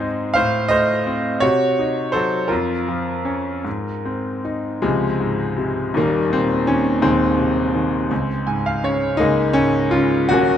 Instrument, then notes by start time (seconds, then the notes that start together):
grand piano
Already playing: G#2 C4 G#4 C5
0.00 D#4
0.34 A2 C5 F5
0.68 A3 C5 D#5
1.07 C4
1.40 C3 F#4 C#5
1.79 D#4
2.12 F#3 A4 C5
2.48 F2 F4 A#4
2.88 F3
3.25 C#4
3.64 G#2
4.05 C4
4.45 D#4
4.82 C#2 C3 F3 G#3
5.20 G#2
5.58 C3
5.94 D#1 D#2 D#3 G3 A#3
6.30 A#2 C4
6.67 D#3 C#4
7.02 D#1 D#2 D#3 G#3 C4
7.38 C3
7.75 D#3
8.11 C#2
8.47 G#2 G#5
8.66 F5
8.84 C#3 C#5
9.17 C#2 G#3 A#3 D#4
9.53 G#2 C#4
9.91 C#3 F4
10.29 D#1 D#2 C#4 F#4
10.33 A#3